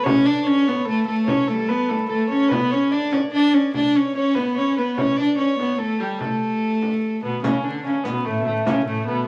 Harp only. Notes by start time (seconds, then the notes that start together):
Already playing: A4 B4
0.03 C#5
0.25 D5
0.46 C#5
0.68 B4
0.88 A4
1.08 A4
1.29 C#5
1.59 A4
1.69 B4
1.90 A4
2.09 A4
2.31 C#5
2.51 B4
2.71 C#5
2.91 D5
3.13 C#5
3.36 D5
3.54 C#5
3.74 D5
3.95 C#5
4.15 C#5
4.35 B4
4.57 C#5
4.78 B4
4.99 C#5
5.18 D5
5.39 C#5
5.79 A4
6.00 G4
6.20 A4
7.22 B3
7.44 C#4
7.86 C#4
8.04 B3
8.25 A3
8.46 A3
8.67 C#4
8.88 A3
9.08 B3